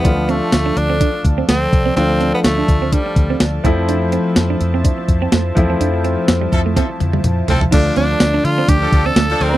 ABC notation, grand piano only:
X:1
M:4/4
L:1/8
Q:"Swing 16ths" 1/4=125
K:Ddor
V:1 name="Grand piano"
[F,A,DF]8 | [F,A,DF]6- [F,A,DF] [F,A,CE]- | [F,A,CE]6- [F,A,CE] [F,A,CE]- | [F,A,CE]6- [F,A,CE] z |
[D,F,A,DF]8 |]